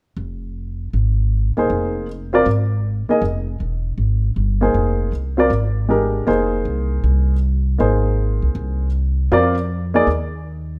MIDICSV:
0, 0, Header, 1, 4, 480
1, 0, Start_track
1, 0, Tempo, 380952
1, 218, Time_signature, 4, 2, 24, 8
1, 13595, End_track
2, 0, Start_track
2, 0, Title_t, "Grand piano"
2, 0, Program_c, 0, 0
2, 1976, Note_on_c, 0, 58, 46
2, 1988, Note_on_c, 0, 63, 44
2, 1989, Note_on_c, 0, 68, 42
2, 2002, Note_on_c, 0, 72, 55
2, 2587, Note_off_c, 0, 58, 0
2, 2593, Note_off_c, 0, 63, 0
2, 2593, Note_off_c, 0, 68, 0
2, 2600, Note_off_c, 0, 72, 0
2, 2935, Note_on_c, 0, 60, 56
2, 2943, Note_on_c, 0, 65, 50
2, 2950, Note_on_c, 0, 70, 54
2, 2959, Note_on_c, 0, 74, 62
2, 3083, Note_off_c, 0, 60, 0
2, 3087, Note_off_c, 0, 65, 0
2, 3090, Note_off_c, 0, 70, 0
2, 3095, Note_off_c, 0, 74, 0
2, 3895, Note_on_c, 0, 58, 50
2, 3901, Note_on_c, 0, 63, 45
2, 3909, Note_on_c, 0, 68, 45
2, 3914, Note_on_c, 0, 75, 57
2, 4042, Note_off_c, 0, 58, 0
2, 4046, Note_off_c, 0, 63, 0
2, 4050, Note_off_c, 0, 68, 0
2, 4052, Note_off_c, 0, 75, 0
2, 5809, Note_on_c, 0, 58, 50
2, 5817, Note_on_c, 0, 63, 42
2, 5825, Note_on_c, 0, 68, 45
2, 5829, Note_on_c, 0, 72, 52
2, 6423, Note_off_c, 0, 58, 0
2, 6427, Note_off_c, 0, 63, 0
2, 6431, Note_off_c, 0, 68, 0
2, 6433, Note_off_c, 0, 72, 0
2, 6768, Note_on_c, 0, 60, 49
2, 6778, Note_on_c, 0, 65, 47
2, 6791, Note_on_c, 0, 70, 46
2, 6800, Note_on_c, 0, 74, 56
2, 6919, Note_off_c, 0, 60, 0
2, 6924, Note_off_c, 0, 65, 0
2, 6930, Note_off_c, 0, 70, 0
2, 6935, Note_off_c, 0, 74, 0
2, 7416, Note_on_c, 0, 56, 44
2, 7424, Note_on_c, 0, 62, 39
2, 7431, Note_on_c, 0, 67, 39
2, 7440, Note_on_c, 0, 70, 50
2, 7895, Note_on_c, 0, 58, 54
2, 7897, Note_off_c, 0, 56, 0
2, 7901, Note_off_c, 0, 62, 0
2, 7902, Note_on_c, 0, 63, 45
2, 7905, Note_off_c, 0, 67, 0
2, 7905, Note_on_c, 0, 68, 43
2, 7909, Note_off_c, 0, 70, 0
2, 7912, Note_on_c, 0, 72, 55
2, 9238, Note_off_c, 0, 58, 0
2, 9241, Note_off_c, 0, 63, 0
2, 9243, Note_off_c, 0, 68, 0
2, 9246, Note_off_c, 0, 72, 0
2, 9808, Note_on_c, 0, 58, 48
2, 9817, Note_on_c, 0, 63, 45
2, 9828, Note_on_c, 0, 68, 42
2, 9832, Note_on_c, 0, 72, 54
2, 11153, Note_off_c, 0, 58, 0
2, 11158, Note_off_c, 0, 63, 0
2, 11163, Note_off_c, 0, 68, 0
2, 11166, Note_off_c, 0, 72, 0
2, 11738, Note_on_c, 0, 60, 60
2, 11742, Note_on_c, 0, 65, 58
2, 11748, Note_on_c, 0, 70, 54
2, 11759, Note_on_c, 0, 74, 67
2, 12021, Note_off_c, 0, 60, 0
2, 12023, Note_off_c, 0, 65, 0
2, 12026, Note_off_c, 0, 70, 0
2, 12032, Note_off_c, 0, 74, 0
2, 12525, Note_on_c, 0, 58, 59
2, 12528, Note_on_c, 0, 63, 51
2, 12539, Note_on_c, 0, 68, 54
2, 12547, Note_on_c, 0, 74, 66
2, 12676, Note_off_c, 0, 58, 0
2, 12677, Note_off_c, 0, 63, 0
2, 12683, Note_off_c, 0, 68, 0
2, 12686, Note_off_c, 0, 74, 0
2, 13595, End_track
3, 0, Start_track
3, 0, Title_t, "Upright bass"
3, 0, Program_c, 1, 32
3, 209, Note_on_c, 1, 29, 69
3, 1126, Note_off_c, 1, 29, 0
3, 1177, Note_on_c, 1, 32, 67
3, 1924, Note_off_c, 1, 32, 0
3, 1977, Note_on_c, 1, 28, 52
3, 2129, Note_off_c, 1, 28, 0
3, 2139, Note_on_c, 1, 29, 66
3, 3051, Note_off_c, 1, 29, 0
3, 3097, Note_on_c, 1, 32, 72
3, 3844, Note_off_c, 1, 32, 0
3, 4052, Note_on_c, 1, 29, 72
3, 4502, Note_off_c, 1, 29, 0
3, 4537, Note_on_c, 1, 28, 58
3, 4984, Note_off_c, 1, 28, 0
3, 5010, Note_on_c, 1, 32, 64
3, 5461, Note_off_c, 1, 32, 0
3, 5495, Note_on_c, 1, 31, 66
3, 5944, Note_off_c, 1, 31, 0
3, 5977, Note_on_c, 1, 29, 69
3, 6424, Note_off_c, 1, 29, 0
3, 6452, Note_on_c, 1, 36, 55
3, 6902, Note_off_c, 1, 36, 0
3, 6932, Note_on_c, 1, 32, 68
3, 7847, Note_off_c, 1, 32, 0
3, 7904, Note_on_c, 1, 29, 65
3, 8348, Note_off_c, 1, 29, 0
3, 8382, Note_on_c, 1, 36, 62
3, 8826, Note_off_c, 1, 36, 0
3, 8866, Note_on_c, 1, 36, 72
3, 9774, Note_off_c, 1, 36, 0
3, 9826, Note_on_c, 1, 32, 74
3, 10567, Note_off_c, 1, 32, 0
3, 10614, Note_on_c, 1, 36, 59
3, 10766, Note_off_c, 1, 36, 0
3, 10772, Note_on_c, 1, 36, 75
3, 11686, Note_off_c, 1, 36, 0
3, 11740, Note_on_c, 1, 41, 69
3, 12649, Note_off_c, 1, 41, 0
3, 12689, Note_on_c, 1, 39, 72
3, 13595, Note_off_c, 1, 39, 0
3, 13595, End_track
4, 0, Start_track
4, 0, Title_t, "Muted upright bass strokes"
4, 3888, Note_on_c, 9, 29, 29
4, 4014, Note_off_c, 9, 29, 0
4, 13595, End_track
0, 0, End_of_file